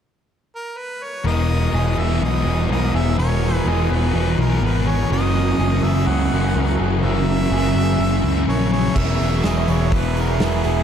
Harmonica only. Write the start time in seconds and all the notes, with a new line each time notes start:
0.55 A#4
0.78 B4
1.03 C#5
1.27 D#5
1.98 E5
2.23 D#5
2.71 D#5
2.95 E5
3.18 C#5
3.55 B4
3.69 D#5
3.92 B4
4.40 A#4
4.64 B4
4.88 C#5
5.12 D#5
5.83 E5
6.07 F#5
7.03 E5
8.48 C#5
8.73 C#5
8.96 E5
9.46 D#5
9.70 C#5
9.94 B4
10.20 A#4
10.44 G#4